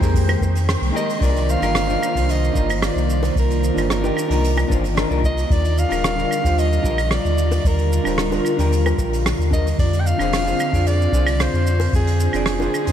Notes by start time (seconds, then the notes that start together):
Already playing: D#3 G#3 A#3 C5 G5
0.00 F2 D#4 G4 G#4 A#4, kick, open hi-hat, shaker
0.14 kick, open hi-hat, shaker
0.29 open hi-hat, high bongo, claves
0.41 F2, kick, high bongo, shaker
0.55 open hi-hat, shaker
0.69 cross-stick, open hi-hat, shaker
0.82 C2, open hi-hat
0.92 D#4 G4 A#4 D#5
0.97 shaker
1.10 open hi-hat, shaker
1.19 C2 D#3 A#3 D4 D#4 F4 A#4 C5 D5, kick, open hi-hat
1.23 shaker
1.36 open hi-hat, shaker
1.49 F5, shaker
1.60 G1 D4 D#4 F4 A#4, open hi-hat, claves, shaker
1.75 cross-stick, open hi-hat, shaker
1.87 D4 D#4 F4 A#4, shaker
2.03 claves, shaker
2.13 C2 D4 D#4 F4 C5, kick, open hi-hat, shaker
2.29 D#5, open hi-hat, shaker
2.44 shaker
2.53 G1 D4 D#4 F4 A#4, kick, shaker
2.69 open hi-hat, claves, shaker
2.76 D#5
2.82 D5, cross-stick, open hi-hat, shaker
2.96 C2, shaker
3.10 shaker
3.23 open hi-hat, high bongo, shaker
3.36 C2 A#4, kick, open hi-hat, shaker
3.50 open hi-hat, shaker
3.64 shaker
3.75 G1 D4 D#4 F4 C5, open hi-hat, claves, shaker
3.90 A#4, cross-stick, open hi-hat, shaker
4.01 D4 D#4 F4, high bongo, shaker
4.05 G4
4.17 claves, shaker
4.28 C2 D4 D#4 F4 A#4, open hi-hat, shaker
4.44 open hi-hat, shaker
4.57 high bongo, claves, shaker
4.68 G1 D4 D#4 F4 C5, kick, high bongo, shaker
4.84 open hi-hat, shaker
4.95 D4 D#4 F4 A#4, cross-stick, open hi-hat, shaker
5.08 C2 D4 D#4 F4 A#4, shaker
5.24 D#5, kick, shaker
5.37 open hi-hat, shaker
5.50 D#2 D3 G3 D5, kick, open hi-hat, shaker
5.64 open hi-hat, shaker
5.78 F5, shaker
5.89 D#1 D4 F4 A#4, open hi-hat, claves, shaker
6.04 cross-stick, open hi-hat, shaker
6.16 D4 F4 A#4, shaker
6.31 claves, shaker
6.42 D#2 D4 F4 G4 C5, kick, open hi-hat, shaker
6.58 D#5, open hi-hat, shaker
6.73 shaker
6.82 A#1 D4 F4 G4 A#4, kick, shaker
6.98 open hi-hat, claves, shaker
7.11 D5, cross-stick, open hi-hat, shaker
7.25 D#2, shaker
7.38 shaker
7.51 open hi-hat, high bongo, shaker
7.64 D#2 A#4, kick, open hi-hat, shaker
7.79 open hi-hat, shaker
7.93 shaker
8.04 D#1 D4 F4 G4 C5, open hi-hat, claves, shaker
8.18 A#4, cross-stick, open hi-hat, shaker
8.31 D4 F4 A#4, open hi-hat, high bongo, shaker
8.45 claves, shaker
8.57 D#2 D4 F4 G4 A#4, open hi-hat, shaker
8.72 open hi-hat, shaker
8.86 high bongo, claves, shaker
8.98 A#1, kick, high bongo, shaker
9.13 open hi-hat, shaker
9.26 cross-stick, open hi-hat, shaker
9.39 D#2, shaker
9.51 D4 F4 A#4 D#5, kick, shaker
9.67 open hi-hat, shaker
9.79 F2 C4 D5, kick, open hi-hat, shaker
9.93 open hi-hat, shaker
10.00 G5
10.07 F5, shaker
10.18 F1 D4 F4 G#4 C5, open hi-hat, claves, shaker
10.33 cross-stick, open hi-hat, shaker
10.45 D4 F4 G#4 C5, shaker
10.60 claves, shaker
10.72 F2 D4 F4 G#4 D5, kick, open hi-hat, shaker
10.86 D5, open hi-hat, shaker
11.02 shaker
11.12 C2 D4 F4 G#4 C5, kick, shaker
11.27 open hi-hat, claves, shaker
11.40 C5, cross-stick, open hi-hat, shaker
11.53 F2, shaker
11.67 shaker
11.80 open hi-hat, high bongo, shaker
11.93 F2 G#4, kick, open hi-hat, shaker
12.07 open hi-hat, shaker
12.20 shaker
12.33 F1 D4 F4 G#4 D5, open hi-hat, claves, shaker
12.46 G#4, cross-stick, open hi-hat, shaker
12.59 D4 F4 G#4 C5, high bongo, shaker
12.74 claves, shaker
12.85 F2 D4 F4 G#4 C5, open hi-hat, shaker